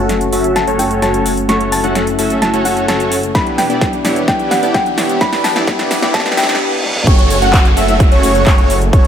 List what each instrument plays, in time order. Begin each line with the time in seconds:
Already playing: detuned saw bass F#1, supersaw synth A3 C#4 F#4 A4 F#5, grand piano A3 C#4, analog synth pad A3 C#4 F#4, synth pluck A5, riser
0.00 grand piano F#4 A4
0.09 snare, closed hi-hat, shaker
0.21 closed hi-hat, shaker
0.33 detuned saw bass F#1, supersaw synth A3 C#4 F#4 A4 E5, open hi-hat, shaker
0.44 closed hi-hat, shaker
0.56 synth pluck A5, snare, closed hi-hat, shaker
0.68 detuned saw bass F#1, supersaw synth A3 C#4 F#4 A4 C#5, closed hi-hat, shaker
0.78 grand piano A3 C#4 F#4 A4, synth pluck G5, open hi-hat, shaker
0.91 closed hi-hat, shaker
1.02 detuned saw bass F#1, supersaw synth A3 C#4 F#4 A4 C#5, synth pluck A5, snare, closed hi-hat, shaker
1.14 closed hi-hat, shaker
1.26 open hi-hat, shaker
1.37 closed hi-hat, shaker
1.48 detuned saw bass F#1, grand piano A3 C#4 F#4 A4, supersaw synth A3 C#4 F#4 A4 C#5, analog synth pad E4, synth pluck C#6, snare, closed hi-hat, shaker
1.61 closed hi-hat
1.72 synth pluck A5, open hi-hat, shaker
1.83 detuned saw bass F#1, grand piano A3 C#4 F#4 A4, supersaw synth A3 C#4 F#4 A4 F#5, closed hi-hat, shaker
1.95 snare, closed hi-hat, shaker
2.07 closed hi-hat, shaker
2.19 detuned saw bass F#1, supersaw synth A3 C#4 F#4 A4 E5, open hi-hat, shaker
2.30 closed hi-hat, shaker
2.42 synth pluck A5, snare, closed hi-hat, shaker
2.53 detuned saw bass F#1, supersaw synth A3 C#4 F#4 A4 C#5, closed hi-hat, shaker
2.64 grand piano A3 C#4 F#4 A4, synth pluck F#5, open hi-hat, shaker
2.77 closed hi-hat, shaker
2.88 detuned saw bass F#1, supersaw synth A3 C#4 F#4 A4 C#5, synth pluck A5, snare, closed hi-hat, shaker
3.00 closed hi-hat, shaker
3.12 open hi-hat, shaker
3.23 closed hi-hat, shaker
3.34 detuned saw bass E1, analog synth pad E3 B3 D4 G4, grand piano B3 D4 E4 G4, supersaw synth B3 D4 E4 G4 B4, synth pluck B5, kick, snare, closed hi-hat, shaker
3.47 closed hi-hat
3.58 synth pluck G5, snare, open hi-hat, shaker
3.69 detuned saw bass E1, grand piano B3 D4 E4 G4, supersaw synth B3 D4 E4 G4 D5, closed hi-hat, shaker
3.81 kick, snare, closed hi-hat, shaker
3.93 closed hi-hat, shaker
4.05 detuned saw bass E1, supersaw synth B3 D4 E4 G4 C#5, snare, open hi-hat, shaker
4.16 closed hi-hat, shaker
4.27 detuned saw bass E1, grand piano B3 D4 E4 G4, synth pluck G5, kick, snare, closed hi-hat, shaker
4.40 closed hi-hat, shaker
4.51 synth pluck F#5, snare, open hi-hat, shaker
4.62 detuned saw bass E1, grand piano B3 D4 E4 G4, supersaw synth B3 D4 E4 G4 D5, closed hi-hat, shaker
4.74 synth pluck G5, kick, snare, closed hi-hat, shaker
4.86 closed hi-hat, shaker
4.98 detuned saw bass E1, supersaw synth B3 D4 E4 G4 C#5, snare, open hi-hat, shaker
5.09 closed hi-hat, shaker
5.20 detuned saw bass E1, grand piano B3 D4 E4 G4, synth pluck B5, kick, snare, closed hi-hat, shaker
5.33 snare, open hi-hat
5.44 synth pluck A5, snare, open hi-hat, shaker
5.55 detuned saw bass E1, grand piano B3 D4 E4 G4, supersaw synth B3 D4 E4 G4 D5, snare, closed hi-hat, shaker
5.67 detuned saw bass E1, grand piano B3 D4 E4 G4, supersaw synth B3 E4 B4, kick, snare, closed hi-hat, shaker
5.79 snare, closed hi-hat, shaker
5.91 snare, open hi-hat, shaker
6.01 detuned saw bass E1, grand piano B3 D4 E4 G4, supersaw synth B3 D4 E4 G4 D5, snare, closed hi-hat, shaker
6.14 detuned saw bass E1, grand piano B3 D4 G4, synth pluck A5, kick, snare, closed hi-hat, reverse cymbal, shaker
6.20 snare
6.26 snare, closed hi-hat, shaker
6.32 snare
6.37 detuned saw bass E1, grand piano B3 D4 E4 G4, supersaw synth B3 D4 E4 G4 B4, synth pluck G5, snare, open hi-hat, shaker
6.43 snare
6.49 snare, closed hi-hat, shaker
6.55 snare
6.84 high tom
6.96 mid tom
7.07 detuned saw bass F#1, supersaw synth A3 C#4 F#4 A4 C#5, analog synth pad A3 C#4 F#4, analog synth lead C#5, kick, closed hi-hat, crash, downlifter, shaker
7.19 closed hi-hat
7.30 open hi-hat, shaker
7.42 detuned saw bass F#1, supersaw synth A3 C#4 F#4 A4 F#5, analog synth lead F#5, closed hi-hat, shaker
7.54 kick, clap, closed hi-hat, shaker
7.65 clap, closed hi-hat, shaker
7.77 detuned saw bass F#1, supersaw synth A3 C#4 F#4 A4 E5, analog synth lead E5, open hi-hat, shaker
7.88 closed hi-hat, shaker
8.00 kick, closed hi-hat, shaker
8.12 detuned saw bass F#1, supersaw synth A3 C#4 F#4 A4 C#5, analog synth lead C#5, closed hi-hat, shaker
8.23 open hi-hat, shaker
8.35 closed hi-hat, shaker
8.47 detuned saw bass F#1, supersaw synth A3 C#4 F#4 C#5, analog synth lead C#5, kick, clap, closed hi-hat, shaker
8.58 closed hi-hat, shaker
8.70 open hi-hat, shaker
8.82 closed hi-hat, shaker
8.93 detuned saw bass F#1, supersaw synth A3 C#4 F#4 A4 C#5, analog synth pad E4, analog synth lead C#5, kick, closed hi-hat, shaker